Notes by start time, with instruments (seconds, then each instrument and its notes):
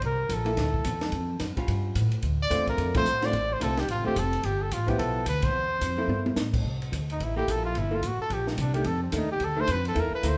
0.02 upright bass C2, trumpet A#4, kick, ride
0.29 upright bass A#1, kick, hi-hat pedal, ride
0.34 trumpet A4
0.45 hollow-body jazz guitar A#3 E4 A4, ride
0.57 upright bass D2, kick, snare, ride
0.74 kick
0.84 upright bass E2, kick, hi-hat pedal, ride
1.01 snare, ride
1.12 upright bass F2, kick, ride
1.40 upright bass F#2, kick, snare, hi-hat pedal, ride
1.57 hollow-body jazz guitar G3 C#4 F4, muted upright bass stroke, kick, ride
1.68 upright bass G2, kick, ride
1.95 upright bass A2, kick, hi-hat pedal, ride
2.12 ride
2.23 upright bass D2, kick, ride
2.42 trumpet D5
2.50 upright bass E2, hollow-body jazz guitar D3 A3 C4 F4, kick, hi-hat pedal, ride
2.67 trumpet A#4, kick, ride
2.78 upright bass F2, kick, ride
2.94 hollow-body jazz guitar D3 A3 C4 F4, trumpet C5, kick, ride
3.05 upright bass A2, hi-hat pedal
3.22 hollow-body jazz guitar D3 A3 C4 F4, trumpet D5, snare, ride
3.33 upright bass A1, kick, ride
3.53 trumpet C5
3.60 upright bass C2, hollow-body jazz guitar D3 A3 C4 F4, trumpet A4, kick, hi-hat pedal, ride
3.77 trumpet G4, snare, ride
3.88 upright bass A1, trumpet F4, kick, ride
3.97 upright bass F1
4.05 upright bass D1, hollow-body jazz guitar D3 A3 C4 F4, trumpet G4
4.16 upright bass F1, trumpet A4, kick, hi-hat pedal, ride
4.33 ride
4.43 upright bass G1, trumpet G4, kick, ride
4.62 trumpet A4
4.71 upright bass A1, trumpet F4, kick, hi-hat pedal, ride
4.87 hollow-body jazz guitar F3 B3 E4, trumpet G4, kick, ride
4.99 upright bass B1, trumpet A4, kick, ride
5.26 upright bass D2, trumpet B4, kick, hi-hat pedal, ride
5.42 trumpet C5, kick, ride
5.53 upright bass E2
5.81 upright bass F2, kick, hi-hat pedal, ride
5.98 hollow-body jazz guitar A#3 E4 A4
6.08 upright bass G2, high tom
6.26 high tom
6.36 upright bass A2, snare, hi-hat pedal
6.54 kick, crash
6.65 upright bass C2, kick
6.82 ride
6.92 upright bass D2, kick, hi-hat pedal, ride
7.10 trumpet D#4, ride
7.20 upright bass A1, trumpet E4, kick, ride
7.36 hollow-body jazz guitar A#3 E4 A4, trumpet G4
7.48 upright bass A#1, trumpet A4, kick, hi-hat pedal, ride
7.65 trumpet F4
7.75 upright bass G1, kick, ride
7.79 trumpet E4
7.91 hollow-body jazz guitar A#3 E4 A4
7.95 trumpet F4
8.03 upright bass A1, kick, hi-hat pedal, ride
8.07 trumpet F#4
8.19 trumpet A4, muted upright bass stroke
8.30 upright bass A#1, trumpet G4, kick, ride
8.47 trumpet A#3, snare
8.58 upright bass C2, trumpet D4, kick, hi-hat pedal, ride
8.74 hollow-body jazz guitar D#3 A3 D4, trumpet G4, ride
8.84 upright bass F2, trumpet A4, kick, ride
9.03 trumpet C4
9.12 upright bass D#2, hollow-body jazz guitar D#3 A3 D4, kick, hi-hat pedal, ride
9.17 trumpet D#4
9.32 trumpet G4
9.40 upright bass D2, kick, ride
9.44 trumpet A4
9.56 hollow-body jazz guitar D#3 A3 D4
9.61 trumpet C5
9.67 upright bass F2, kick, hi-hat pedal, ride
9.72 trumpet B4
9.85 trumpet A4, ride
9.95 upright bass E2, hollow-body jazz guitar A#3 E4 A4, kick, ride
10.00 trumpet A#4
10.12 trumpet B4, muted upright bass stroke
10.23 upright bass D2, hollow-body jazz guitar A#3 E4 A4, kick, hi-hat pedal, ride
10.28 trumpet C5